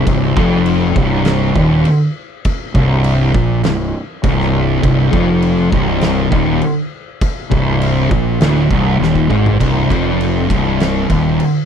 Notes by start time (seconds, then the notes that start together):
0.07 C1 C2, kick, crash
0.37 F1 F2, kick
0.66 crash
0.96 C1 C2, kick
1.25 snare, crash
1.55 D#1 D#2, kick
1.85 crash
2.45 kick, crash
2.75 C1 C2, kick
3.04 crash
3.34 A#1 A#2, kick
3.63 C1 C2, snare, crash
4.24 C1 C2, kick, crash
4.41 snare
4.83 C1 C2, kick, crash
5.12 F1 F2, kick
5.42 crash
5.72 C1 C2, kick
6.01 snare, crash
6.31 D#1 D#2, kick
6.62 crash
7.21 kick, crash
7.51 C1 C2, kick
7.81 crash
8.10 A#1 A#2, kick
8.40 D1 D2, snare, crash
8.70 C1 C2, kick
8.99 D#1 D#2, snare
9.15 kick
9.30 G#1 G#2, kick
9.46 floor tom
9.60 C1 C2, kick, crash
9.90 F1 F2, kick, crash
10.21 crash
10.50 C1 C2, kick, crash
10.80 snare, crash
11.09 D#1 D#2, kick, crash
11.40 crash